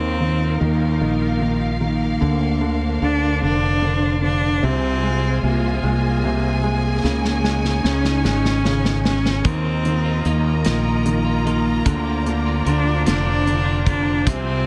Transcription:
0.00 0.57 D#2 medium
0.00 0.19 D#3 medium
0.00 0.62 C4 medium
0.00 2.19 D#4 medium
0.00 2.19 F4 medium
0.00 2.19 A#4 medium
0.00 4.59 F5 medium
0.20 0.59 D#3 soft
0.61 0.99 D#2 medium
0.61 1.00 D#3 soft
0.61 0.99 A#3 medium
1.01 2.18 A#1 medium
1.01 1.39 D#3 medium
1.01 1.78 A#3 medium
1.41 1.79 D#3 soft
1.81 2.20 D#3 soft
1.81 3.06 A#3 medium
2.21 2.98 D2 medium
2.21 2.60 D3 medium
2.21 4.60 D4 medium
2.21 4.60 A#4 medium
2.21 7.00 C5 medium
2.61 3.00 D3 soft
3.02 3.40 D2 medium
3.02 3.40 D3 soft
3.02 3.43 D4 medium
3.42 4.59 F1 medium
3.42 3.80 D3 soft
3.42 4.19 D4 loud
3.82 4.21 D3 soft
4.22 4.61 D3 soft
4.22 4.66 D4 medium
4.63 5.39 C2 medium
4.63 5.41 C3 medium
4.63 5.44 C4 loud
4.63 7.02 F4 medium
4.63 9.41 G#4 medium
4.63 9.42 G#5 medium
5.03 5.82 G#3 soft
5.43 5.81 C2 medium
5.43 6.22 C3 soft
5.43 5.81 A#3 medium
5.83 7.00 C2 medium
5.83 6.62 G#3 medium
5.83 6.61 A#3 medium
6.24 7.02 C3 medium
6.63 7.03 G#3 soft
6.63 7.89 A#3 medium
7.04 7.80 C#2 medium
7.04 7.82 C#3 medium
7.04 9.43 D#4 medium
7.04 9.43 C#5 medium
7.04 snare soft
7.25 snare medium
7.44 8.23 G#3 soft
7.44 snare medium
7.65 snare soft
7.84 8.22 C#2 medium
7.84 8.63 C#3 medium
7.84 8.26 C#4 medium
7.84 snare medium
8.05 snare medium
8.24 9.41 G#1 medium
8.24 9.03 G#3 soft
8.24 9.02 C#4 medium
8.24 snare medium
8.45 snare medium
8.64 9.42 C#3 medium
8.64 snare medium
8.85 snare medium
9.04 9.44 G#3 soft
9.04 9.47 C#4 medium
9.04 snare medium
9.26 snare medium
9.44 10.21 D#2 loud
9.44 9.65 D#3 medium
9.44 9.84 D#3 medium
9.44 9.65 A#3 medium
9.44 10.29 C4 medium
9.44 9.65 D#4 medium
9.44 14.66 F4 medium
9.44 9.64 F4 medium
9.44 11.83 A#4 medium
9.44 11.83 D#5 medium
9.44 14.23 A#5 medium
9.44 kick medium
9.44 closed hi-hat medium
9.65 10.05 A#3 soft
9.65 10.04 D#4 soft
9.65 10.03 F4 soft
9.85 10.24 D#3 soft
9.85 closed hi-hat soft
10.04 10.25 A#3 soft
10.04 10.26 D#4 soft
10.04 10.25 F4 soft
10.25 10.63 D#2 medium
10.25 10.64 D#3 soft
10.25 10.65 A#3 medium
10.25 10.66 A#3 medium
10.25 10.65 D#4 medium
10.25 10.66 F4 medium
10.25 closed hi-hat soft
10.65 11.82 A#1 medium
10.65 10.85 D#3 medium
10.65 11.04 D#3 soft
10.65 10.86 A#3 medium
10.65 11.42 A#3 medium
10.65 10.85 D#4 medium
10.65 10.84 F4 medium
10.65 snare medium
10.65 closed hi-hat medium
10.85 11.26 A#3 soft
10.85 11.25 D#4 soft
10.85 11.24 F4 soft
11.06 11.45 D#3 medium
11.06 closed hi-hat soft
11.25 11.45 A#3 soft
11.25 11.46 D#4 medium
11.25 11.45 F4 soft
11.45 11.85 D#3 medium
11.45 11.85 D#3 soft
11.45 11.85 A#3 medium
11.45 12.70 A#3 medium
11.45 11.86 D#4 medium
11.45 11.86 F4 medium
11.45 closed hi-hat soft
11.85 12.62 D2 medium
11.85 12.06 D3 medium
11.85 12.25 D3 medium
11.85 12.06 F3 medium
11.85 12.06 A#3 medium
11.85 12.05 C4 medium
11.85 12.04 F4 medium
11.85 14.66 C5 medium
11.85 14.25 D5 medium
11.85 kick medium
11.85 closed hi-hat medium
12.05 12.47 A#3 soft
12.05 12.46 C4 soft
12.05 12.44 F4 soft
12.26 12.65 D3 soft
12.26 closed hi-hat soft
12.45 12.65 A#3 soft
12.45 12.66 C4 soft
12.45 12.66 F4 soft
12.65 13.04 D2 medium
12.65 13.05 D3 soft
12.65 13.05 F3 medium
12.65 13.05 A#3 medium
12.65 13.06 C4 medium
12.65 13.08 D4 medium
12.65 13.06 F4 medium
12.65 closed hi-hat medium
13.06 14.23 F1 medium
13.06 13.26 D3 medium
13.06 13.46 D3 soft
13.06 13.26 F3 medium
13.06 13.27 A#3 medium
13.06 13.26 C4 medium
13.06 13.84 D4 loud
13.06 13.24 F4 medium
13.06 snare medium
13.06 closed hi-hat medium
13.26 13.67 A#3 soft
13.26 13.66 C4 soft
13.26 13.64 F4 soft
13.47 13.86 D3 soft
13.47 closed hi-hat soft
13.65 13.86 A#3 soft
13.65 13.87 C4 soft
13.65 13.86 F4 medium
13.86 14.26 D3 soft
13.86 14.26 F3 medium
13.86 14.27 A#3 medium
13.86 14.26 C4 medium
13.86 14.31 D4 medium
13.86 14.27 F4 medium
13.86 kick medium
13.86 closed hi-hat soft
14.26 14.66 C2 medium
14.26 14.47 C3 medium
14.26 14.66 C3 medium
14.26 14.47 F3 medium
14.26 14.47 G#3 medium
14.26 14.46 C4 medium
14.26 14.66 C4 medium
14.26 14.45 F4 medium
14.26 14.66 G#4 medium
14.26 14.66 G#5 medium
14.26 kick medium
14.26 closed hi-hat loud
14.46 14.66 G#3 soft
14.46 14.66 C4 soft
14.46 14.66 F4 soft

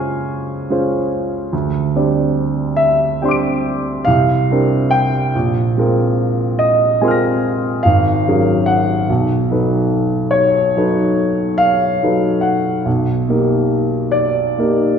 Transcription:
0.00 0.70 G#3 soft
0.00 0.71 C#4 soft
0.00 0.71 F4 soft
0.00 0.72 C5 soft
0.00 1.54 G#5 medium
0.00 1.50 C#6 soft
0.00 1.52 F6 soft
0.00 1.54 C7 soft
0.70 1.48 G#3 soft
0.70 1.49 C#4 soft
0.70 1.49 F4 soft
0.70 1.49 C5 soft
1.53 1.93 D2 soft
1.95 3.17 G3 soft
1.95 3.18 C4 soft
1.95 3.18 D4 soft
1.95 3.18 D5 soft
2.76 4.05 E5 medium
3.21 4.02 G3 soft
3.21 4.03 C4 soft
3.21 4.03 D4 soft
3.21 4.03 D5 soft
3.21 4.03 G5 soft
3.21 4.04 C6 soft
3.28 4.06 D6 soft
3.28 4.07 D7 soft
4.05 4.48 C2 medium
4.05 4.91 F5 medium
4.51 5.31 G3 soft
4.51 5.31 C4 soft
4.51 5.31 D4 soft
4.51 5.31 A#4 soft
4.91 5.33 G5 medium
5.35 5.75 A#1 soft
5.78 6.98 G#3 soft
5.78 6.99 C4 soft
5.78 6.99 F4 soft
5.78 6.99 A#4 soft
6.59 7.84 D#5 medium
7.01 7.80 G#3 soft
7.01 7.81 C4 soft
7.01 7.81 F4 soft
7.01 7.81 A#4 soft
7.01 7.80 G#5 soft
7.01 7.82 C6 soft
7.08 7.83 F6 soft
7.08 7.85 A#6 soft
7.83 8.26 G#1 soft
7.83 8.67 F5 medium
8.28 9.06 F#3 soft
8.28 9.06 C#4 soft
8.28 9.06 G#4 soft
8.28 9.06 A#4 soft
8.66 9.08 F#5 medium
9.09 9.49 B1 soft
9.51 10.72 F#3 soft
9.51 10.72 D#4 soft
9.51 10.72 A4 soft
9.51 10.72 B4 soft
10.31 11.59 C#5 medium
10.76 11.98 F#3 soft
10.76 11.99 D#4 soft
10.76 11.99 A4 soft
10.76 11.99 B4 soft
11.58 12.43 F5 medium
12.03 12.82 F#3 soft
12.03 12.83 D#4 soft
12.03 12.83 A4 soft
12.03 12.83 B4 soft
12.41 12.85 F#5 medium
12.85 13.27 B1 soft
13.29 14.53 A#3 soft
13.29 14.54 D#4 soft
13.29 14.54 G4 soft
13.29 14.54 A#4 soft
14.12 14.99 D5 medium
14.58 14.99 A#3 soft
14.58 14.99 D#4 soft
14.58 14.99 G4 soft
14.58 14.99 A#4 soft

